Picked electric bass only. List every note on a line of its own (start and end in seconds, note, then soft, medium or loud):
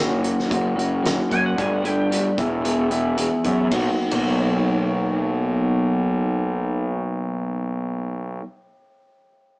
0.00 0.32 F#1 medium
0.52 1.17 F#1 medium
1.32 1.53 F#2 medium
1.59 2.24 G1 medium
2.39 3.27 E1 medium
3.45 3.67 F#2 medium
3.72 3.86 B1 medium
4.12 8.40 B1 medium